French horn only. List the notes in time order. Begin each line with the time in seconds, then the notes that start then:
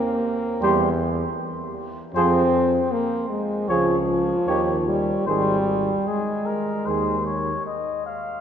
Already playing: A#3
2.14 C4
2.92 A#3
3.29 G#3
3.69 F3
4.88 G3
5.27 G3
6.07 G#3